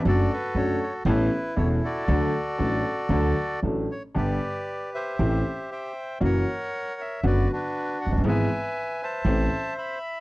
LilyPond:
<<
  \new Staff \with { instrumentName = "Bandoneon" } { \time 4/4 \key d \major \tempo 4 = 118 << { d''8 b'8 cis''8 cis''8 b'4 cis''8 d''8~ | d''2. r8 cis''8 | \key g \major d''4. e''4. g''4 | fis''4. e''8 d''8 b'4 fis''8 |
gis''4. a''4. b''4 | } \\ { <fis' a'>2 e'4. <fis' a'>8~ | <fis' a'>2. r4 | <g' b'>4. <g' c''>4. <c'' e''>4 | <ais' cis''>2 <fis' b'>8 <d' fis'>4. |
<b' e''>4. <c'' e''>4. e''4 | } >> }
  \new Staff \with { instrumentName = "Grand piano" } { \clef bass \time 4/4 \key d \major <fis, fis a d' a'>8 r8 <fis, fis a d' a'>8 r8 <a,, a, e b cis' a'>8 r8 <e,, e, e b cis' a'>8 r8 | <d, d fis a d' a'>8 r8 <a,, a, fis a d' a'>8 r8 <d, d fis a d' a'>8 r8 <a,, a, fis a d' a'>8 r8 | \key g \major <g,, g, d g b g'>8 r4. <a,, a, e a c' g'>8 r4. | <fis, e fis ais cis' fis'>8 r4. <fis, d fis b fis'>8 r4 r32 f,,32 fis,,32 g,,32 |
<gis,, gis, e gis b gis'>8 r4. <a,, a, e a c' a'>8 r4. | }
  \new Staff \with { instrumentName = "Upright bass" } { \clef bass \time 4/4 \key d \major fis,,16. r8 r32 fis,,16. r8 r32 a,,16. r8 r32 e,,16. r8 r32 | d,16. r8 r32 a,,16. r8 r32 d,16. r8 r32 a,,16. r8 r32 | \key g \major g,,16. r4. r32 a,,16. r4. r32 | fis,,16. r4. r32 fis,,16. r4 r16 f,,32 fis,,32 g,,32 |
gis,,16. r4. r32 a,,16. r4. r32 | }
>>